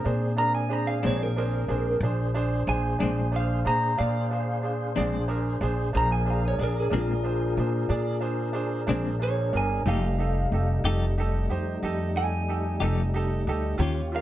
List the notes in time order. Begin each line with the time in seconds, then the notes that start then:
Already playing: C4 D4 G#4
0.05 A#2 D4 G#4 C5
0.37 D4 G#4 A#4 A#5
0.55 G#5
0.69 D4 G#4 C5 A#5
0.87 F5
1.03 A#1 A#2 G#3 C4 D4 G#4 C5 C#5
1.23 A#4
1.36 D4 G#4 A#4 C5
1.68 A#1 D4 G#4 C5
2.00 A#1 D4 G#4 C5
2.34 D4 G#4 C5
2.67 A#1 D4 G#4 C5 G#5
2.99 A#1 A#2 G#3 C4 D4 G#4 C5
3.32 D4 G#4 C5
3.36 F5
3.65 A#2 D4 G#4 C5 A#5
3.98 A#2 D4 G#4 D5 F5
4.30 D4 G#4 C5
4.62 D4 G#4 C5
4.96 A#1 A#2 G#3 C4 D4 G#4 D5
5.28 D4 G#4 A#4
5.61 A#1 D4 G#4 C5
5.93 A#1 D4 G#4 A#4 C5
5.97 A#5
6.12 G#5
6.25 D4 G#4 C5
6.30 F5
6.48 C#5
6.59 A#1 D4 G#4 D5
6.63 A#4
6.80 G#4
6.90 A#1 C4 D4 G#4 A#4
6.94 A#2 G#3 F4
7.23 D4 G#4 C5
7.57 A#2 D4 G#4 C5
7.89 A#2 D4 G#4 D5
8.21 D4 G#4 C5
8.53 D4 G#4 C5
8.87 A#1 G#3 C4 D4 G#4 C5
8.92 A#2
9.19 D4 G#4 C5 C#5
9.53 G1 D4 G#4 A#4
9.57 G#5
9.86 F1 F3 A3 D#4 G4 A4 F5
9.90 G3 D#4
10.18 D#4 G4 A4
10.52 F1 D#4 G4 A4
10.84 F1 F3 A3 D#4 G4 A4
11.18 D#4 G4 A4
11.49 F2 D#4 G4 C5
11.83 F2 D#4 G4 A4
12.15 D#4 G4 A4 G#5
12.48 D#4 G4 A4
12.80 F1 F3 A3 D#4 G4 A4
13.14 D#4 G4 A4
13.47 D2 D#4 G4 A4
13.78 D#2 D#3 C#4 F4 G4 C#5
13.82 F4 G4
14.12 F4 G4 A#4 F5